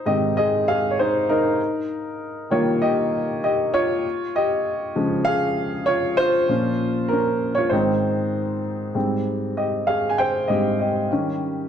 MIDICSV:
0, 0, Header, 1, 2, 480
1, 0, Start_track
1, 0, Key_signature, -4, "major"
1, 0, Tempo, 613497
1, 1244, Time_signature, 4, 2, 24, 8
1, 9142, End_track
2, 0, Start_track
2, 0, Title_t, "Grand piano"
2, 0, Program_c, 0, 0
2, 0, Control_c, 0, 64, 127
2, 0, Note_on_c, 0, 63, 70
2, 0, Note_on_c, 0, 72, 90
2, 44, Note_on_c, 0, 44, 45
2, 50, Note_on_c, 0, 75, 74
2, 51, Note_on_c, 0, 51, 46
2, 51, Note_on_c, 0, 60, 51
2, 56, Note_on_c, 0, 67, 58
2, 274, Note_off_c, 0, 67, 0
2, 278, Note_off_c, 0, 75, 0
2, 289, Note_on_c, 0, 75, 81
2, 299, Note_on_c, 0, 68, 61
2, 515, Note_off_c, 0, 68, 0
2, 532, Note_on_c, 0, 77, 80
2, 534, Note_off_c, 0, 75, 0
2, 539, Note_on_c, 0, 68, 69
2, 700, Note_off_c, 0, 77, 0
2, 704, Note_off_c, 0, 68, 0
2, 710, Note_on_c, 0, 73, 58
2, 764, Note_off_c, 0, 73, 0
2, 777, Note_off_c, 0, 72, 0
2, 777, Note_on_c, 0, 72, 70
2, 782, Note_off_c, 0, 63, 0
2, 782, Note_on_c, 0, 63, 61
2, 997, Note_off_c, 0, 63, 0
2, 1012, Note_on_c, 0, 70, 75
2, 1016, Note_on_c, 0, 63, 65
2, 1017, Note_off_c, 0, 72, 0
2, 1213, Note_off_c, 0, 44, 0
2, 1216, Note_off_c, 0, 51, 0
2, 1216, Note_off_c, 0, 60, 0
2, 1253, Control_c, 0, 64, 0
2, 1396, Control_c, 0, 64, 127
2, 1939, Note_off_c, 0, 63, 0
2, 1959, Note_on_c, 0, 51, 54
2, 1967, Note_on_c, 0, 55, 45
2, 1967, Note_on_c, 0, 73, 73
2, 1972, Note_on_c, 0, 58, 57
2, 1972, Note_on_c, 0, 65, 59
2, 1997, Note_off_c, 0, 70, 0
2, 2192, Note_off_c, 0, 65, 0
2, 2204, Note_on_c, 0, 75, 83
2, 2207, Note_on_c, 0, 67, 66
2, 2213, Note_off_c, 0, 73, 0
2, 2651, Note_off_c, 0, 51, 0
2, 2653, Note_off_c, 0, 75, 0
2, 2655, Note_off_c, 0, 55, 0
2, 2655, Note_off_c, 0, 67, 0
2, 2657, Note_off_c, 0, 58, 0
2, 2691, Note_on_c, 0, 75, 73
2, 2692, Note_on_c, 0, 67, 62
2, 2911, Note_off_c, 0, 75, 0
2, 2912, Note_off_c, 0, 67, 0
2, 2923, Note_on_c, 0, 73, 89
2, 2925, Note_on_c, 0, 65, 64
2, 3175, Control_c, 0, 64, 0
2, 3301, Control_c, 0, 64, 127
2, 3373, Note_off_c, 0, 73, 0
2, 3374, Note_off_c, 0, 65, 0
2, 3408, Note_on_c, 0, 67, 63
2, 3410, Note_on_c, 0, 75, 79
2, 3855, Note_off_c, 0, 67, 0
2, 3856, Note_off_c, 0, 75, 0
2, 3878, Note_on_c, 0, 49, 51
2, 3880, Note_on_c, 0, 53, 47
2, 3888, Note_on_c, 0, 56, 52
2, 4105, Note_on_c, 0, 77, 98
2, 4126, Note_on_c, 0, 68, 73
2, 4201, Note_off_c, 0, 49, 0
2, 4202, Note_off_c, 0, 53, 0
2, 4206, Note_off_c, 0, 56, 0
2, 4574, Note_off_c, 0, 68, 0
2, 4584, Note_on_c, 0, 73, 89
2, 4601, Note_on_c, 0, 65, 65
2, 4610, Note_off_c, 0, 77, 0
2, 4817, Note_off_c, 0, 73, 0
2, 4826, Note_off_c, 0, 65, 0
2, 4828, Note_on_c, 0, 72, 102
2, 4849, Note_on_c, 0, 65, 73
2, 5074, Note_on_c, 0, 46, 50
2, 5077, Note_on_c, 0, 53, 44
2, 5084, Note_on_c, 0, 61, 54
2, 5096, Control_c, 0, 64, 0
2, 5244, Control_c, 0, 64, 127
2, 5536, Note_off_c, 0, 65, 0
2, 5543, Note_on_c, 0, 70, 71
2, 5559, Note_off_c, 0, 61, 0
2, 5571, Note_on_c, 0, 61, 47
2, 5579, Note_off_c, 0, 72, 0
2, 5888, Note_off_c, 0, 70, 0
2, 5903, Note_off_c, 0, 61, 0
2, 5905, Note_on_c, 0, 73, 75
2, 5931, Note_on_c, 0, 65, 57
2, 6008, Note_off_c, 0, 46, 0
2, 6010, Note_off_c, 0, 53, 0
2, 6020, Note_on_c, 0, 72, 68
2, 6036, Note_on_c, 0, 44, 54
2, 6039, Note_off_c, 0, 73, 0
2, 6040, Note_off_c, 0, 65, 0
2, 6040, Note_on_c, 0, 51, 43
2, 6048, Note_on_c, 0, 63, 53
2, 6049, Note_on_c, 0, 60, 51
2, 6055, Control_c, 0, 64, 0
2, 6179, Control_c, 0, 64, 127
2, 6722, Note_off_c, 0, 72, 0
2, 6735, Note_off_c, 0, 63, 0
2, 6970, Note_off_c, 0, 44, 0
2, 6972, Note_off_c, 0, 51, 0
2, 6976, Note_off_c, 0, 60, 0
2, 7000, Note_on_c, 0, 44, 44
2, 7002, Note_on_c, 0, 55, 43
2, 7008, Note_on_c, 0, 60, 48
2, 7015, Control_c, 0, 64, 0
2, 7154, Control_c, 0, 64, 127
2, 7489, Note_on_c, 0, 75, 57
2, 7490, Note_on_c, 0, 67, 47
2, 7691, Note_off_c, 0, 44, 0
2, 7693, Note_off_c, 0, 55, 0
2, 7695, Note_off_c, 0, 60, 0
2, 7711, Note_off_c, 0, 67, 0
2, 7722, Note_on_c, 0, 77, 75
2, 7730, Note_on_c, 0, 68, 52
2, 7735, Note_off_c, 0, 75, 0
2, 7898, Note_on_c, 0, 80, 63
2, 7900, Note_off_c, 0, 68, 0
2, 7914, Note_off_c, 0, 77, 0
2, 7959, Note_off_c, 0, 80, 0
2, 7967, Note_on_c, 0, 79, 88
2, 7978, Note_on_c, 0, 72, 67
2, 8195, Note_off_c, 0, 72, 0
2, 8198, Note_on_c, 0, 75, 67
2, 8207, Note_on_c, 0, 44, 38
2, 8211, Note_on_c, 0, 55, 38
2, 8213, Note_on_c, 0, 60, 49
2, 8214, Note_off_c, 0, 79, 0
2, 8217, Note_on_c, 0, 67, 57
2, 8422, Note_off_c, 0, 44, 0
2, 8425, Note_off_c, 0, 55, 0
2, 8425, Note_off_c, 0, 75, 0
2, 8426, Note_off_c, 0, 60, 0
2, 8435, Note_off_c, 0, 67, 0
2, 8445, Note_on_c, 0, 75, 53
2, 8463, Note_on_c, 0, 67, 47
2, 8694, Control_c, 0, 64, 0
2, 8695, Note_on_c, 0, 51, 45
2, 8700, Note_on_c, 0, 55, 43
2, 8703, Note_on_c, 0, 61, 49
2, 8780, Note_off_c, 0, 75, 0
2, 8790, Note_off_c, 0, 67, 0
2, 8820, Control_c, 0, 64, 127
2, 9142, Note_off_c, 0, 51, 0
2, 9142, Note_off_c, 0, 55, 0
2, 9142, Note_off_c, 0, 61, 0
2, 9142, End_track
0, 0, End_of_file